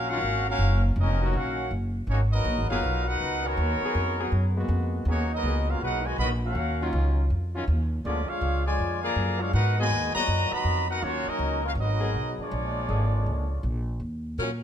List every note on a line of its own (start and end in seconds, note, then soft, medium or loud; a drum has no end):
0.00 0.21 A#1 medium
0.10 0.19 D#3 loud
0.10 0.19 F#3 loud
0.10 0.47 A#3 loud
0.10 0.18 C#4 medium
0.10 0.47 C#4 loud
0.10 0.19 F4 loud
0.10 0.47 F#4 medium
0.10 0.47 A#4 medium
0.10 0.47 F5 loud
0.10 0.47 F#5 loud
0.21 0.58 G#1 loud
0.48 0.82 A#3 medium
0.48 0.82 C#4 medium
0.48 0.83 C#4 loud
0.48 0.82 F#4 medium
0.48 0.83 F#4 medium
0.48 0.83 A#4 loud
0.48 0.83 F5 loud
0.59 0.95 F#1 loud
0.96 1.33 F1 loud
0.96 1.33 F#3 medium
0.96 1.33 A#3 medium
0.96 1.33 C#4 medium
0.96 1.32 D#4 medium
1.00 1.33 F#4 medium
1.00 1.34 A#4 medium
1.00 1.33 D#5 medium
1.21 1.69 D#3 loud
1.21 1.69 F#3 medium
1.21 1.69 C#4 loud
1.21 1.70 F#4 loud
1.33 1.70 A#1 medium
1.33 1.72 A#3 medium
1.33 1.72 C#4 medium
1.33 1.73 C#4 medium
1.33 1.73 F#4 medium
1.33 1.73 A#4 medium
1.33 1.73 F5 medium
1.33 1.73 F#5 medium
1.71 2.06 F#1 medium
2.07 2.44 G#1 medium
2.07 2.21 A#3 medium
2.07 2.19 C#4 medium
2.07 2.21 D#4 medium
2.07 2.21 F#4 medium
2.07 2.21 C#5 medium
2.32 2.67 F#3 medium
2.32 2.67 B3 medium
2.32 2.67 D#4 medium
2.32 2.67 F#4 medium
2.32 2.68 A#4 loud
2.32 2.67 D#5 loud
2.45 2.58 A#1 medium
2.58 2.70 G#1 medium
2.69 2.82 F#1 medium
2.69 3.04 F#3 medium
2.69 2.79 F#3 loud
2.69 2.79 A#3 medium
2.69 3.03 B3 medium
2.69 2.80 B3 medium
2.69 3.05 D#4 medium
2.69 3.04 F4 medium
2.69 2.79 G#4 loud
2.69 3.05 A#4 medium
2.69 3.05 B4 medium
2.69 3.05 F5 loud
2.83 3.19 B1 medium
3.04 3.43 B3 loud
3.04 3.43 D#4 loud
3.04 3.44 D#4 loud
3.04 3.40 F#4 medium
3.04 3.44 A#4 loud
3.04 3.45 B4 loud
3.04 3.44 F#5 loud
3.21 3.56 C#2 medium
3.41 4.55 D#3 medium
3.41 4.55 C#4 medium
3.41 4.55 F#4 medium
3.46 4.58 B3 medium
3.46 4.57 F#4 medium
3.46 4.57 A#4 medium
3.46 4.57 C#5 loud
3.57 3.80 D#2 loud
3.81 4.17 F#3 loud
3.81 4.17 B3 medium
3.81 4.18 G#4 loud
3.81 4.18 A#4 loud
3.81 muted upright bass stroke soft
3.95 4.31 F2 medium
4.19 4.54 F#3 loud
4.19 4.54 B3 loud
4.19 4.54 G#4 loud
4.19 4.54 A#4 loud
4.32 4.68 F#2 medium
4.55 5.04 G#3 loud
4.55 5.04 A#3 medium
4.55 5.04 B3 medium
4.55 5.04 F#4 loud
4.68 5.05 F2 loud
5.05 5.42 D#2 loud
5.05 5.23 F#3 loud
5.05 5.23 A#3 medium
5.05 5.23 B3 medium
5.05 5.30 C#4 medium
5.05 5.23 G#4 loud
5.10 5.31 A#3 medium
5.10 5.31 D#4 medium
5.10 5.31 F#4 medium
5.10 5.31 C#5 loud
5.33 5.67 F#3 medium
5.33 5.67 B3 medium
5.33 5.68 B3 medium
5.33 5.67 D#4 medium
5.33 5.68 F#4 medium
5.33 5.68 A#4 medium
5.33 5.68 D#5 loud
5.43 5.80 C#2 loud
5.43 6.00 F#3 loud
5.43 6.01 A#3 medium
5.43 6.01 B3 medium
5.43 6.01 G#4 loud
5.69 5.83 C#4 medium
5.69 5.82 F4 medium
5.69 5.83 F#4 medium
5.69 5.83 A#4 medium
5.69 5.83 F5 medium
5.80 6.17 B1 medium
5.80 6.04 B3 medium
5.80 6.04 D#4 medium
5.80 6.05 D#4 medium
5.80 6.04 F#4 medium
5.80 6.05 A#4 medium
5.80 6.05 B4 medium
5.80 6.05 F#5 loud
6.06 6.19 B2 medium
6.06 6.18 D#3 medium
6.06 6.19 G#3 medium
6.06 6.19 F#4 medium
6.06 6.19 B4 medium
6.06 6.19 D#5 medium
6.06 6.19 G#5 medium
6.18 6.54 A#1 medium
6.18 6.30 D#3 medium
6.18 6.30 F#3 medium
6.18 6.30 B3 medium
6.18 6.31 F#4 medium
6.18 6.30 A#4 medium
6.18 6.31 D#5 medium
6.18 6.30 B5 loud
6.43 6.90 A#3 medium
6.43 6.90 C#4 medium
6.43 6.91 C#4 medium
6.43 6.90 F#4 medium
6.43 6.91 A#4 medium
6.43 6.91 F5 medium
6.43 6.91 F#5 medium
6.55 6.92 D#2 medium
6.80 7.28 D#3 loud
6.80 7.28 F#3 loud
6.80 7.28 C#4 loud
6.80 7.28 F4 loud
6.93 7.29 C#2 loud
7.30 7.66 F2 medium
7.55 7.64 D#3 medium
7.55 7.64 F#3 medium
7.55 7.63 C#4 medium
7.55 7.64 F4 loud
7.67 8.04 D#2 medium
8.04 8.27 D2 medium
8.04 8.21 D3 medium
8.04 8.28 F3 medium
8.04 8.28 G#3 medium
8.04 8.21 A#3 medium
8.04 8.21 C#4 medium
8.04 8.28 C#4 medium
8.04 8.28 D4 medium
8.04 8.28 F4 medium
8.04 8.21 G#4 medium
8.04 8.28 D5 loud
8.29 8.65 G#3 medium
8.29 8.67 D4 medium
8.29 8.66 F4 medium
8.29 8.67 G#4 medium
8.29 8.65 C#5 medium
8.29 8.66 F5 loud
8.29 muted upright bass stroke soft
8.41 8.78 C#2 loud
8.66 9.01 D3 medium
8.66 9.01 F3 medium
8.66 9.01 G#3 medium
8.66 9.01 F4 medium
8.66 9.01 C#5 medium
8.66 9.01 D5 medium
8.66 9.01 G#5 loud
8.79 9.15 F2 medium
9.03 9.38 D3 medium
9.03 9.38 F3 medium
9.03 9.38 A#3 loud
9.03 9.38 G#4 medium
9.03 9.38 D5 loud
9.03 9.38 F5 medium
9.03 9.38 A#5 loud
9.16 9.52 F#2 loud
9.40 9.54 G#3 medium
9.40 9.54 D4 medium
9.40 9.54 F4 medium
9.40 9.54 G#4 medium
9.40 9.54 C#5 medium
9.40 9.54 F5 loud
9.53 9.89 G#2 loud
9.53 9.77 B3 medium
9.53 9.76 D#4 medium
9.53 9.77 D#4 medium
9.53 9.77 F#4 medium
9.53 9.76 A#4 loud
9.53 9.76 B4 loud
9.53 9.76 F#5 loud
9.78 10.13 B2 medium
9.78 10.13 D#3 medium
9.78 9.87 F#3 loud
9.78 10.13 G#3 medium
9.78 9.87 A#3 medium
9.78 9.87 B3 medium
9.78 10.13 F#4 medium
9.78 9.87 G#4 loud
9.78 10.14 B4 medium
9.78 10.13 D#5 loud
9.78 10.14 G#5 loud
9.90 10.13 D#2 loud
10.14 10.50 A#2 medium
10.14 10.50 D#3 medium
10.14 10.23 F#3 medium
10.14 10.50 F#3 medium
10.14 10.23 A#3 medium
10.14 10.24 B3 medium
10.14 10.50 F#4 loud
10.14 10.23 G#4 loud
10.14 10.50 B4 medium
10.14 10.50 D#5 medium
10.14 10.50 A#5 loud
10.14 muted upright bass stroke soft
10.28 10.51 F#2 medium
10.51 10.90 D#3 loud
10.51 10.90 F#3 loud
10.51 10.89 B3 medium
10.51 10.90 F#4 loud
10.51 10.90 D#5 loud
10.51 10.90 A#5 loud
10.51 10.90 B5 loud
10.51 muted upright bass stroke soft
10.64 11.01 F2 medium
10.89 11.02 B3 medium
10.89 11.02 D#4 medium
10.89 11.02 F#4 medium
10.89 11.02 A#4 medium
10.89 11.02 B4 medium
10.89 11.02 F#5 loud
11.02 11.25 D#2 medium
11.02 11.27 F#3 medium
11.02 11.27 A#3 medium
11.02 11.28 C#4 medium
11.02 11.28 F4 medium
11.02 11.27 F#4 loud
11.02 11.27 C#5 loud
11.27 11.65 F#3 medium
11.27 11.64 A#3 medium
11.27 11.65 C#4 medium
11.27 11.65 D#4 medium
11.27 11.65 F#4 medium
11.27 11.65 A#4 loud
11.27 11.65 D#5 loud
11.27 muted upright bass stroke soft
11.39 11.75 C#2 loud
11.65 11.71 A#3 medium
11.65 11.71 C#4 medium
11.65 11.72 C#4 medium
11.65 11.71 F4 medium
11.65 11.72 F#4 medium
11.65 11.72 A#4 medium
11.65 11.72 F5 medium
11.75 12.13 G#1 medium
11.75 12.35 F#3 medium
11.75 12.35 B3 medium
11.75 12.35 D#4 medium
11.80 12.37 B3 medium
11.80 12.37 F#4 medium
11.80 12.37 A#4 medium
11.80 12.36 D#5 loud
12.00 12.49 F#3 loud
12.00 12.48 B3 medium
12.00 12.49 G#4 loud
12.00 12.49 A#4 medium
12.14 12.37 B1 medium
12.38 13.64 F3 medium
12.38 13.64 G#3 medium
12.38 13.65 G#3 medium
12.38 13.64 D4 medium
12.38 13.66 C#5 medium
12.38 muted upright bass stroke soft
12.42 13.66 F4 medium
12.42 13.66 D5 loud
12.51 12.88 A#1 loud
12.88 13.25 G#1 loud
12.88 13.46 D3 loud
12.88 13.46 A#3 medium
12.88 13.45 D4 medium
12.88 13.46 G#4 loud
13.26 13.62 C#2 medium
13.63 13.99 A#1 medium
14.00 14.37 D#2 medium
14.38 14.63 A#2 medium
14.38 14.50 F#3 medium
14.38 14.50 C#4 medium
14.38 14.50 F4 medium
14.38 14.50 A#4 medium